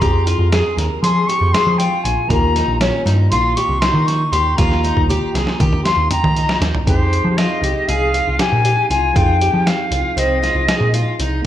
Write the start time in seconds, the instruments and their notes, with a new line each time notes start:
0.00 picked electric bass F2, tine electric piano F3 C4 G4 G#4, twelve-string acoustic guitar G4, flute A#5, kick, closed hi-hat
0.27 twelve-string acoustic guitar F4, closed hi-hat
0.39 picked electric bass F2
0.52 twelve-string acoustic guitar G#4, snare, closed hi-hat
0.77 picked electric bass D#2, twelve-string acoustic guitar A#4, snare, closed hi-hat
1.03 picked electric bass F3, twelve-string acoustic guitar G#4, flute C6, closed hi-hat
1.27 twelve-string acoustic guitar G4, flute C#6, closed hi-hat
1.41 picked electric bass F2
1.53 twelve-string acoustic guitar G#4, flute C6, snare, closed hi-hat
1.67 picked electric bass F3
1.78 twelve-string acoustic guitar F4, flute G5, closed hi-hat
2.02 picked electric bass A#1, flute G#5, closed hi-hat
2.27 picked electric bass D#2, tine electric piano D#3 A#3 F4, twelve-string acoustic guitar A#3, flute A#5, kick, closed hi-hat
2.32 tine electric piano G4
2.56 twelve-string acoustic guitar D#4, snare, closed hi-hat
2.68 picked electric bass A#1
2.81 twelve-string acoustic guitar C#4, snare, closed hi-hat
3.06 picked electric bass G2, twelve-string acoustic guitar D#4, snare, closed hi-hat
3.31 picked electric bass A#1, twelve-string acoustic guitar F4, flute C6, closed hi-hat
3.56 twelve-string acoustic guitar G4, flute C#6, closed hi-hat
3.69 picked electric bass C2
3.80 twelve-string acoustic guitar D#4, flute C6, snare, closed hi-hat
3.94 picked electric bass D#3
4.06 flute C#6, snare, closed hi-hat
4.32 picked electric bass D#2, twelve-string acoustic guitar G4, flute C6, closed hi-hat
4.56 picked electric bass D#2, tine electric piano D#3 A#3 F4 G4, twelve-string acoustic guitar F4, flute A#5, kick, snare, closed hi-hat
4.71 snare
4.84 twelve-string acoustic guitar D#4, closed hi-hat
4.97 picked electric bass D#2, kick
5.10 twelve-string acoustic guitar G4, closed hi-hat, high tom
5.34 picked electric bass C2, twelve-string acoustic guitar G#4, snare, closed hi-hat
5.47 snare
5.60 picked electric bass D#3, twelve-string acoustic guitar G4, kick, closed hi-hat
5.73 mid tom
5.84 twelve-string acoustic guitar F4, flute C6, snare, closed hi-hat
5.97 picked electric bass D#2
6.11 twelve-string acoustic guitar G4, flute A#5, closed hi-hat, mid tom
6.24 picked electric bass D#3, floor tom
6.36 twelve-string acoustic guitar D#4, closed hi-hat
6.49 snare
6.61 picked electric bass D#2, snare, closed hi-hat
6.75 floor tom
6.85 picked electric bass F2, tine electric piano F3 C4 D#4 G#4, twelve-string acoustic guitar G4, flute C5, kick, closed hi-hat
7.13 closed hi-hat
7.25 picked electric bass F3
7.37 twelve-string acoustic guitar F4, flute D#5, snare, closed hi-hat
7.62 picked electric bass C2, twelve-string acoustic guitar G4, closed hi-hat
7.88 picked electric bass C2, twelve-string acoustic guitar G#4, flute F5, closed hi-hat
8.14 twelve-string acoustic guitar F4, closed hi-hat
8.28 picked electric bass C2
8.39 twelve-string acoustic guitar G4, flute G#5, snare, closed hi-hat
8.52 picked electric bass A#2
8.65 twelve-string acoustic guitar G4, closed hi-hat
8.90 picked electric bass C2, twelve-string acoustic guitar F4, flute G#5, closed hi-hat
9.13 picked electric bass F2, tine electric piano F3 C4 D#4, twelve-string acoustic guitar F4, flute G5, kick, closed hi-hat
9.18 tine electric piano G#4
9.41 twelve-string acoustic guitar G4, closed hi-hat
9.54 picked electric bass F3
9.66 flute F5, snare, closed hi-hat
9.91 picked electric bass C2, twelve-string acoustic guitar F4, closed hi-hat
10.16 picked electric bass C2, twelve-string acoustic guitar C4, flute D#5, closed hi-hat
10.43 twelve-string acoustic guitar F4, snare, closed hi-hat
10.55 picked electric bass C2
10.68 twelve-string acoustic guitar G#4, snare, closed hi-hat
10.80 picked electric bass A#2
10.94 twelve-string acoustic guitar F4, closed hi-hat
11.20 picked electric bass C2, twelve-string acoustic guitar D#4, closed hi-hat
11.42 tine electric piano A#3